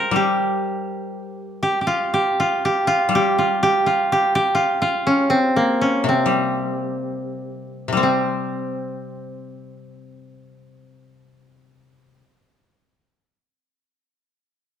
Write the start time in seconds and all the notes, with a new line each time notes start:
Already playing: G3 F4 G4 A#4 C5
0.11 G3
0.16 G4
1.63 G4
1.81 G4
1.87 F4
2.14 G4
2.40 F4
2.65 G4
2.87 F4
3.09 G3
3.15 G4
3.38 F4
3.63 G4
3.86 F4
4.12 G4
4.35 G4
4.55 F4
4.82 F4
5.07 C#4
5.30 C4
5.56 A#3
5.81 C#4
6.04 C3
6.09 C4
6.26 G3
7.88 C3
7.93 G3
7.97 C4
8.03 C4